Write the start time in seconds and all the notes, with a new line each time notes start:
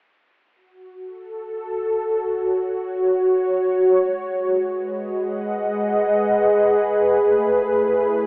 0.56 F#4
0.99 A4
1.96 C#5
3.84 G#3
4.23 G#4
4.66 B4
4.74 D#5
5.16 F#5
7.15 A3
7.48 E4
8.14 C#5